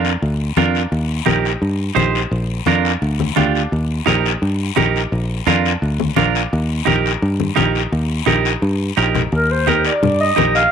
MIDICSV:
0, 0, Header, 1, 5, 480
1, 0, Start_track
1, 0, Key_signature, -3, "major"
1, 0, Tempo, 350263
1, 1264, Time_signature, 4, 2, 24, 8
1, 14688, End_track
2, 0, Start_track
2, 0, Title_t, "Clarinet"
2, 0, Program_c, 0, 71
2, 12809, Note_on_c, 0, 70, 82
2, 13041, Note_on_c, 0, 72, 75
2, 13062, Note_off_c, 0, 70, 0
2, 13277, Note_on_c, 0, 70, 74
2, 13298, Note_off_c, 0, 72, 0
2, 13510, Note_off_c, 0, 70, 0
2, 13517, Note_on_c, 0, 74, 81
2, 13956, Note_off_c, 0, 74, 0
2, 13990, Note_on_c, 0, 75, 95
2, 14433, Note_off_c, 0, 75, 0
2, 14470, Note_on_c, 0, 77, 87
2, 14688, Note_off_c, 0, 77, 0
2, 14688, End_track
3, 0, Start_track
3, 0, Title_t, "Clean electric guitar"
3, 0, Program_c, 1, 27
3, 0, Note_on_c, 1, 62, 81
3, 0, Note_on_c, 1, 65, 65
3, 0, Note_on_c, 1, 70, 92
3, 156, Note_off_c, 1, 62, 0
3, 159, Note_off_c, 1, 65, 0
3, 161, Note_off_c, 1, 70, 0
3, 782, Note_on_c, 1, 62, 75
3, 786, Note_on_c, 1, 65, 70
3, 794, Note_on_c, 1, 70, 78
3, 1119, Note_off_c, 1, 62, 0
3, 1121, Note_off_c, 1, 65, 0
3, 1122, Note_off_c, 1, 70, 0
3, 1723, Note_on_c, 1, 63, 76
3, 1731, Note_on_c, 1, 67, 78
3, 1735, Note_on_c, 1, 70, 70
3, 2069, Note_off_c, 1, 63, 0
3, 2073, Note_off_c, 1, 67, 0
3, 2073, Note_off_c, 1, 70, 0
3, 2671, Note_on_c, 1, 63, 77
3, 2679, Note_on_c, 1, 67, 69
3, 2684, Note_on_c, 1, 72, 90
3, 3022, Note_off_c, 1, 63, 0
3, 3026, Note_off_c, 1, 67, 0
3, 3029, Note_off_c, 1, 72, 0
3, 3655, Note_on_c, 1, 62, 84
3, 3661, Note_on_c, 1, 65, 77
3, 3673, Note_on_c, 1, 70, 81
3, 3994, Note_off_c, 1, 62, 0
3, 3997, Note_off_c, 1, 65, 0
3, 4000, Note_off_c, 1, 70, 0
3, 4605, Note_on_c, 1, 62, 82
3, 4612, Note_on_c, 1, 65, 72
3, 4623, Note_on_c, 1, 67, 79
3, 4949, Note_off_c, 1, 62, 0
3, 4954, Note_off_c, 1, 65, 0
3, 4955, Note_off_c, 1, 67, 0
3, 5561, Note_on_c, 1, 63, 78
3, 5566, Note_on_c, 1, 67, 63
3, 5575, Note_on_c, 1, 70, 87
3, 5907, Note_off_c, 1, 67, 0
3, 5908, Note_off_c, 1, 63, 0
3, 5913, Note_off_c, 1, 70, 0
3, 6526, Note_on_c, 1, 63, 77
3, 6532, Note_on_c, 1, 67, 77
3, 6540, Note_on_c, 1, 70, 73
3, 6869, Note_off_c, 1, 63, 0
3, 6873, Note_off_c, 1, 67, 0
3, 6873, Note_off_c, 1, 70, 0
3, 7492, Note_on_c, 1, 62, 85
3, 7497, Note_on_c, 1, 65, 75
3, 7505, Note_on_c, 1, 70, 82
3, 7832, Note_off_c, 1, 62, 0
3, 7835, Note_off_c, 1, 65, 0
3, 7836, Note_off_c, 1, 70, 0
3, 8449, Note_on_c, 1, 62, 75
3, 8455, Note_on_c, 1, 65, 68
3, 8463, Note_on_c, 1, 70, 84
3, 8790, Note_off_c, 1, 62, 0
3, 8794, Note_off_c, 1, 65, 0
3, 8794, Note_off_c, 1, 70, 0
3, 9393, Note_on_c, 1, 63, 81
3, 9405, Note_on_c, 1, 67, 76
3, 9416, Note_on_c, 1, 70, 77
3, 9742, Note_off_c, 1, 63, 0
3, 9749, Note_off_c, 1, 67, 0
3, 9751, Note_off_c, 1, 70, 0
3, 10355, Note_on_c, 1, 63, 77
3, 10362, Note_on_c, 1, 67, 74
3, 10366, Note_on_c, 1, 70, 76
3, 10704, Note_off_c, 1, 63, 0
3, 10707, Note_off_c, 1, 70, 0
3, 10708, Note_off_c, 1, 67, 0
3, 11322, Note_on_c, 1, 63, 83
3, 11327, Note_on_c, 1, 67, 75
3, 11336, Note_on_c, 1, 70, 91
3, 11667, Note_off_c, 1, 63, 0
3, 11670, Note_off_c, 1, 67, 0
3, 11674, Note_off_c, 1, 70, 0
3, 12293, Note_on_c, 1, 63, 77
3, 12300, Note_on_c, 1, 67, 64
3, 12300, Note_on_c, 1, 70, 86
3, 12633, Note_off_c, 1, 63, 0
3, 12635, Note_off_c, 1, 67, 0
3, 12637, Note_off_c, 1, 70, 0
3, 13250, Note_on_c, 1, 63, 66
3, 13258, Note_on_c, 1, 67, 59
3, 13269, Note_on_c, 1, 70, 69
3, 13592, Note_off_c, 1, 63, 0
3, 13598, Note_off_c, 1, 67, 0
3, 13599, Note_off_c, 1, 70, 0
3, 14200, Note_on_c, 1, 63, 73
3, 14208, Note_on_c, 1, 67, 62
3, 14215, Note_on_c, 1, 70, 77
3, 14547, Note_off_c, 1, 63, 0
3, 14551, Note_off_c, 1, 67, 0
3, 14555, Note_off_c, 1, 70, 0
3, 14688, End_track
4, 0, Start_track
4, 0, Title_t, "Fingered electric bass"
4, 0, Program_c, 2, 33
4, 0, Note_on_c, 2, 41, 86
4, 212, Note_off_c, 2, 41, 0
4, 306, Note_on_c, 2, 38, 89
4, 689, Note_off_c, 2, 38, 0
4, 779, Note_on_c, 2, 41, 89
4, 1164, Note_off_c, 2, 41, 0
4, 1258, Note_on_c, 2, 39, 89
4, 1644, Note_off_c, 2, 39, 0
4, 1738, Note_on_c, 2, 34, 88
4, 2124, Note_off_c, 2, 34, 0
4, 2215, Note_on_c, 2, 43, 87
4, 2602, Note_off_c, 2, 43, 0
4, 2689, Note_on_c, 2, 34, 90
4, 3078, Note_off_c, 2, 34, 0
4, 3172, Note_on_c, 2, 34, 88
4, 3559, Note_off_c, 2, 34, 0
4, 3656, Note_on_c, 2, 41, 86
4, 4042, Note_off_c, 2, 41, 0
4, 4136, Note_on_c, 2, 38, 84
4, 4521, Note_off_c, 2, 38, 0
4, 4621, Note_on_c, 2, 38, 80
4, 5004, Note_off_c, 2, 38, 0
4, 5100, Note_on_c, 2, 39, 83
4, 5484, Note_off_c, 2, 39, 0
4, 5577, Note_on_c, 2, 34, 89
4, 5962, Note_off_c, 2, 34, 0
4, 6057, Note_on_c, 2, 43, 78
4, 6442, Note_off_c, 2, 43, 0
4, 6541, Note_on_c, 2, 34, 88
4, 6924, Note_off_c, 2, 34, 0
4, 7018, Note_on_c, 2, 34, 86
4, 7402, Note_off_c, 2, 34, 0
4, 7492, Note_on_c, 2, 41, 89
4, 7879, Note_off_c, 2, 41, 0
4, 7976, Note_on_c, 2, 38, 88
4, 8361, Note_off_c, 2, 38, 0
4, 8456, Note_on_c, 2, 34, 82
4, 8842, Note_off_c, 2, 34, 0
4, 8946, Note_on_c, 2, 39, 95
4, 9328, Note_off_c, 2, 39, 0
4, 9418, Note_on_c, 2, 34, 87
4, 9803, Note_off_c, 2, 34, 0
4, 9899, Note_on_c, 2, 43, 91
4, 10283, Note_off_c, 2, 43, 0
4, 10380, Note_on_c, 2, 34, 90
4, 10764, Note_off_c, 2, 34, 0
4, 10858, Note_on_c, 2, 39, 91
4, 11243, Note_off_c, 2, 39, 0
4, 11330, Note_on_c, 2, 34, 92
4, 11718, Note_off_c, 2, 34, 0
4, 11814, Note_on_c, 2, 43, 87
4, 12201, Note_off_c, 2, 43, 0
4, 12299, Note_on_c, 2, 34, 90
4, 12684, Note_off_c, 2, 34, 0
4, 12778, Note_on_c, 2, 39, 96
4, 13548, Note_off_c, 2, 39, 0
4, 13740, Note_on_c, 2, 43, 86
4, 14125, Note_off_c, 2, 43, 0
4, 14226, Note_on_c, 2, 34, 80
4, 14609, Note_off_c, 2, 34, 0
4, 14688, End_track
5, 0, Start_track
5, 0, Title_t, "Drums"
5, 65, Note_on_c, 9, 73, 64
5, 202, Note_off_c, 9, 73, 0
5, 308, Note_on_c, 9, 74, 67
5, 446, Note_off_c, 9, 74, 0
5, 779, Note_on_c, 9, 63, 78
5, 791, Note_on_c, 9, 73, 64
5, 917, Note_off_c, 9, 63, 0
5, 928, Note_off_c, 9, 73, 0
5, 1028, Note_on_c, 9, 73, 69
5, 1165, Note_off_c, 9, 73, 0
5, 1263, Note_on_c, 9, 74, 70
5, 1400, Note_off_c, 9, 74, 0
5, 1731, Note_on_c, 9, 63, 86
5, 1753, Note_on_c, 9, 73, 66
5, 1868, Note_off_c, 9, 63, 0
5, 1890, Note_off_c, 9, 73, 0
5, 1992, Note_on_c, 9, 73, 62
5, 2129, Note_off_c, 9, 73, 0
5, 2230, Note_on_c, 9, 74, 66
5, 2367, Note_off_c, 9, 74, 0
5, 2695, Note_on_c, 9, 63, 81
5, 2714, Note_on_c, 9, 73, 65
5, 2832, Note_off_c, 9, 63, 0
5, 2851, Note_off_c, 9, 73, 0
5, 2951, Note_on_c, 9, 73, 62
5, 3088, Note_off_c, 9, 73, 0
5, 3187, Note_on_c, 9, 74, 71
5, 3324, Note_off_c, 9, 74, 0
5, 3645, Note_on_c, 9, 63, 75
5, 3664, Note_on_c, 9, 73, 72
5, 3782, Note_off_c, 9, 63, 0
5, 3801, Note_off_c, 9, 73, 0
5, 3906, Note_on_c, 9, 73, 63
5, 4043, Note_off_c, 9, 73, 0
5, 4140, Note_on_c, 9, 74, 73
5, 4277, Note_off_c, 9, 74, 0
5, 4384, Note_on_c, 9, 63, 67
5, 4521, Note_off_c, 9, 63, 0
5, 4616, Note_on_c, 9, 63, 82
5, 4621, Note_on_c, 9, 73, 62
5, 4753, Note_off_c, 9, 63, 0
5, 4758, Note_off_c, 9, 73, 0
5, 4869, Note_on_c, 9, 73, 65
5, 5006, Note_off_c, 9, 73, 0
5, 5112, Note_on_c, 9, 74, 68
5, 5249, Note_off_c, 9, 74, 0
5, 5575, Note_on_c, 9, 63, 76
5, 5588, Note_on_c, 9, 73, 71
5, 5712, Note_off_c, 9, 63, 0
5, 5725, Note_off_c, 9, 73, 0
5, 5833, Note_on_c, 9, 73, 63
5, 5970, Note_off_c, 9, 73, 0
5, 6067, Note_on_c, 9, 74, 73
5, 6204, Note_off_c, 9, 74, 0
5, 6538, Note_on_c, 9, 63, 84
5, 6553, Note_on_c, 9, 73, 66
5, 6675, Note_off_c, 9, 63, 0
5, 6690, Note_off_c, 9, 73, 0
5, 6795, Note_on_c, 9, 73, 71
5, 6932, Note_off_c, 9, 73, 0
5, 7030, Note_on_c, 9, 74, 63
5, 7167, Note_off_c, 9, 74, 0
5, 7497, Note_on_c, 9, 63, 75
5, 7516, Note_on_c, 9, 73, 74
5, 7634, Note_off_c, 9, 63, 0
5, 7653, Note_off_c, 9, 73, 0
5, 7750, Note_on_c, 9, 73, 62
5, 7887, Note_off_c, 9, 73, 0
5, 7997, Note_on_c, 9, 74, 69
5, 8134, Note_off_c, 9, 74, 0
5, 8218, Note_on_c, 9, 63, 70
5, 8355, Note_off_c, 9, 63, 0
5, 8448, Note_on_c, 9, 63, 79
5, 8472, Note_on_c, 9, 73, 62
5, 8585, Note_off_c, 9, 63, 0
5, 8610, Note_off_c, 9, 73, 0
5, 8706, Note_on_c, 9, 73, 65
5, 8843, Note_off_c, 9, 73, 0
5, 8952, Note_on_c, 9, 74, 69
5, 9089, Note_off_c, 9, 74, 0
5, 9416, Note_on_c, 9, 63, 83
5, 9427, Note_on_c, 9, 73, 68
5, 9553, Note_off_c, 9, 63, 0
5, 9564, Note_off_c, 9, 73, 0
5, 9673, Note_on_c, 9, 73, 63
5, 9810, Note_off_c, 9, 73, 0
5, 9900, Note_on_c, 9, 74, 69
5, 10037, Note_off_c, 9, 74, 0
5, 10136, Note_on_c, 9, 63, 63
5, 10273, Note_off_c, 9, 63, 0
5, 10375, Note_on_c, 9, 63, 75
5, 10381, Note_on_c, 9, 73, 64
5, 10512, Note_off_c, 9, 63, 0
5, 10518, Note_off_c, 9, 73, 0
5, 10624, Note_on_c, 9, 73, 64
5, 10761, Note_off_c, 9, 73, 0
5, 10861, Note_on_c, 9, 74, 72
5, 10998, Note_off_c, 9, 74, 0
5, 11336, Note_on_c, 9, 63, 68
5, 11344, Note_on_c, 9, 73, 71
5, 11473, Note_off_c, 9, 63, 0
5, 11481, Note_off_c, 9, 73, 0
5, 11583, Note_on_c, 9, 73, 66
5, 11720, Note_off_c, 9, 73, 0
5, 11819, Note_on_c, 9, 74, 74
5, 11956, Note_off_c, 9, 74, 0
5, 12299, Note_on_c, 9, 73, 63
5, 12436, Note_off_c, 9, 73, 0
5, 12534, Note_on_c, 9, 73, 61
5, 12541, Note_on_c, 9, 64, 78
5, 12671, Note_off_c, 9, 73, 0
5, 12678, Note_off_c, 9, 64, 0
5, 12773, Note_on_c, 9, 74, 67
5, 12910, Note_off_c, 9, 74, 0
5, 13255, Note_on_c, 9, 73, 73
5, 13260, Note_on_c, 9, 63, 79
5, 13392, Note_off_c, 9, 73, 0
5, 13397, Note_off_c, 9, 63, 0
5, 13492, Note_on_c, 9, 73, 70
5, 13629, Note_off_c, 9, 73, 0
5, 13743, Note_on_c, 9, 74, 70
5, 13750, Note_on_c, 9, 64, 81
5, 13880, Note_off_c, 9, 74, 0
5, 13887, Note_off_c, 9, 64, 0
5, 14216, Note_on_c, 9, 73, 69
5, 14226, Note_on_c, 9, 63, 86
5, 14353, Note_off_c, 9, 73, 0
5, 14363, Note_off_c, 9, 63, 0
5, 14460, Note_on_c, 9, 73, 68
5, 14597, Note_off_c, 9, 73, 0
5, 14688, End_track
0, 0, End_of_file